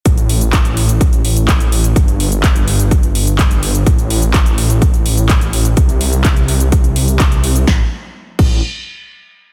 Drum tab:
CC |----------------|----------------|----------------|----------------|
HH |xxoxxxoxxxoxxxox|xxoxxxoxxxoxxxox|xxoxxxoxxxoxxxox|xxoxxxoxxxoxxxox|
SH |xx-xxx-xxx-xxx-x|xx-xxx-xxx-xxx-x|xx-xxx-xxx-xxx-x|xx-xxx-xxx-xxx-x|
CP |----x-------x---|----x-------x---|----x-------x---|----x-------x---|
SD |----------------|----------------|----------------|----------------|
BD |o---o---o---o---|o---o---o---o---|o---o---o---o---|o---o---o---o---|

CC |------x---------|
HH |----------------|
SH |----------------|
CP |----------------|
SD |o---------------|
BD |o-----o---------|